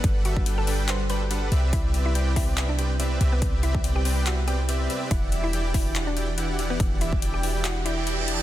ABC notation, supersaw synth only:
X:1
M:4/4
L:1/16
Q:"Swing 16ths" 1/4=142
K:Clyd
V:1 name="Supersaw synth"
z2 [G,DABe]2 [G,DABg]2 [G,DABg]2 [G,DABf] z [G,DABg] z [G,DABf]2 [CGBde]2 | [CGBde]2 [CGBde]2 [CGBdg]2 [CGBg]2 [CGBde] z [CGBdg] z [CGBde]2 [CGBde]2 | [CGBd]2 [CGBde]2 [CGBdg]2 [CGBdg]2 [CGBde] z [CGBdg] z [CGBde]2 [CGBde]2 | [E,E]2 [E,EGde]2 [E,EGdg]2 [E,EGg]2 [E,EGdf] z [E,EGdg] z [E,EGdf]2 [E,EGdf]2 |
[E,EGdf]2 [E,EGde]2 [E,EGdg]2 [E,EGdg]2 [E,EGdf] z [E,EGdg] [E,EGdg] [E,EGdg]2 [E,EGda] [E,EGdg] |]